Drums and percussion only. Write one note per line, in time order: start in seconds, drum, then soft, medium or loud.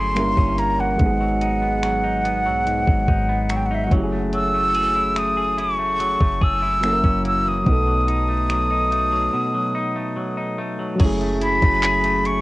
0.16 finger snap loud
0.16 closed hi-hat medium
0.37 kick medium
0.58 closed hi-hat medium
0.99 kick loud
0.99 closed hi-hat medium
1.41 closed hi-hat medium
1.83 finger snap loud
1.83 closed hi-hat medium
2.25 closed hi-hat medium
2.67 closed hi-hat medium
2.87 kick medium
3.08 kick medium
3.49 finger snap loud
3.49 closed hi-hat medium
3.91 kick loud
3.91 closed hi-hat medium
4.33 closed hi-hat medium
4.74 closed hi-hat medium
5.16 finger snap loud
5.16 closed hi-hat medium
5.58 closed hi-hat medium
6.00 closed hi-hat medium
6.21 kick medium
6.41 kick medium
6.83 finger snap loud
6.83 closed hi-hat medium
7.04 kick medium
7.25 closed hi-hat medium
7.66 kick loud
7.66 closed hi-hat medium
8.08 closed hi-hat medium
8.50 finger snap loud
8.50 closed hi-hat medium
8.92 closed hi-hat medium
11.00 kick loud
11.00 closed hi-hat medium
11.00 crash loud
11.21 closed hi-hat soft
11.41 closed hi-hat medium
11.62 kick medium
11.62 closed hi-hat medium
11.83 clap loud
11.83 closed hi-hat medium
12.04 closed hi-hat medium
12.25 closed hi-hat medium